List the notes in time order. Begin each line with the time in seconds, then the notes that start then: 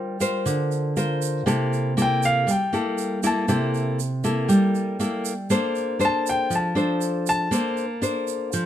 Already playing: G3 F4 A#4 C5
0.20 F4 A#4 C5, shaker
0.46 D3, shaker
0.71 shaker
0.97 F4 A#4 C5, shaker
1.22 shaker
1.46 C3 A#3 E4 A4, shaker
1.73 shaker
1.97 A#3 E4 A4, shaker
2.02 G5
2.23 F5, shaker
2.47 G3 G5, shaker
2.73 A#3 E4 A4, shaker
2.98 shaker
3.23 A#3 E4 A4 A5, shaker
3.48 C3 A#3 E4 A4, shaker
3.75 shaker
4.00 shaker
4.24 A#3 E4 A4, shaker
4.49 G3, shaker
4.75 shaker
5.00 A#3 E4 A4, shaker
5.25 shaker
5.50 A#3 D4 A4 C5, shaker
5.75 shaker
5.99 D4 A4 C5, shaker
6.05 A5
6.26 G5, shaker
6.50 F3, shaker
6.55 A5
6.75 D4 A4 C5, shaker
7.01 shaker
7.27 A5, shaker
7.51 A#3 D4 A4 C5, shaker
7.77 shaker
8.02 D4 A4 C5, shaker
8.28 shaker
8.53 F3, shaker